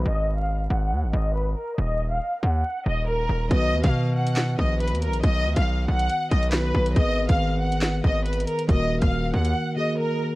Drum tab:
HH |------------------------------------------------|------------------------------------------------|x--------x-----------x--------------x-x-x-x--x--|x--------x-----------x--x-----x--x-----------x--|
CP |------------------------------------------------|------------------------------------------------|------------------------x-----------------------|------------------------------------x-----------|
SD |------------------------------------------------|------------------------------------------------|------------------------o-----------------------|------------------------------------o-----------|
BD |------------------------------------------------|------------------------------------------------|o--------o--------------------o-----------------|o--------o--------------------o-----------o-----|

HH |x--------x-----------x--------------x-x-x-x--x--|x--------x-----------x--------------------------|
CP |------------------------x-----------------------|------------------------------------------------|
SD |------------------------o-----------------------|------------------------------------------------|
BD |o--------o--------------------o-----------------|o--------o--------------------------------------|